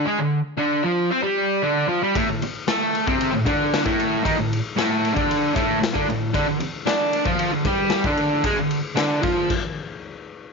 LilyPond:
<<
  \new Staff \with { instrumentName = "Distorted electric guitar" } { \clef bass \time 4/4 \key d \lydian \tempo 4 = 114 <gis gis'>16 d8 r16 <d d'>8 <f f'>8 <c' c''>16 <g g'>8. <d d'>8 <f f'>16 <g g'>16 | <a, a>16 a,16 r8 <a a'>8. <c c'>8 a,16 <d d'>8. <a, a>8. | <dis dis'>16 a,8 r16 <a, a>8. <d d'>8. <a, a>8 a,16 <d d'>16 a,8 | <d d'>16 d16 r8 <d' d''>8. <f f'>8 d16 <g g'>8. <d d'>8. |
<gis gis'>16 d8 r16 <d d'>8 <f f'>8 r2 | }
  \new DrumStaff \with { instrumentName = "Drums" } \drummode { \time 4/4 r4 r4 r4 r4 | <bd cymr>8 cymr8 <cymr sn>8 cymr16 bd16 cymr8 <bd cymr>8 <cymr sn>16 bd16 cymr8 | <bd cymr>8 cymr8 <cymr sn>8 cymr16 bd16 cymr8 <bd cymr>8 <cymr sn>16 bd16 cymr8 | <bd cymr>8 cymr8 <cymr sn>8 cymr16 bd16 cymr8 <bd cymr>8 <cymr sn>16 bd16 cymr8 |
<bd cymr>8 cymr8 <cymr sn>8 <bd cymr>8 <cymc bd>4 r4 | }
>>